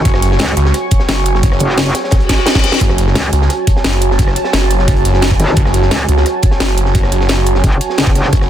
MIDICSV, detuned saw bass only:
0, 0, Header, 1, 2, 480
1, 0, Start_track
1, 0, Key_signature, 3, "minor"
1, 0, Tempo, 344828
1, 72, Time_signature, 4, 2, 24, 8
1, 11831, End_track
2, 0, Start_track
2, 0, Title_t, "Detuned saw bass"
2, 0, Program_c, 0, 39
2, 72, Note_on_c, 0, 30, 98
2, 533, Note_off_c, 0, 30, 0
2, 792, Note_on_c, 0, 37, 97
2, 1013, Note_off_c, 0, 37, 0
2, 1512, Note_on_c, 0, 30, 100
2, 2213, Note_off_c, 0, 30, 0
2, 3912, Note_on_c, 0, 30, 99
2, 4373, Note_off_c, 0, 30, 0
2, 4632, Note_on_c, 0, 37, 99
2, 4853, Note_off_c, 0, 37, 0
2, 5352, Note_on_c, 0, 30, 96
2, 6053, Note_off_c, 0, 30, 0
2, 6312, Note_on_c, 0, 30, 99
2, 7013, Note_off_c, 0, 30, 0
2, 7032, Note_on_c, 0, 30, 97
2, 7493, Note_off_c, 0, 30, 0
2, 7752, Note_on_c, 0, 30, 104
2, 8213, Note_off_c, 0, 30, 0
2, 8472, Note_on_c, 0, 37, 94
2, 8693, Note_off_c, 0, 37, 0
2, 9192, Note_on_c, 0, 30, 96
2, 9893, Note_off_c, 0, 30, 0
2, 9912, Note_on_c, 0, 30, 94
2, 10613, Note_off_c, 0, 30, 0
2, 11592, Note_on_c, 0, 30, 96
2, 11831, Note_off_c, 0, 30, 0
2, 11831, End_track
0, 0, End_of_file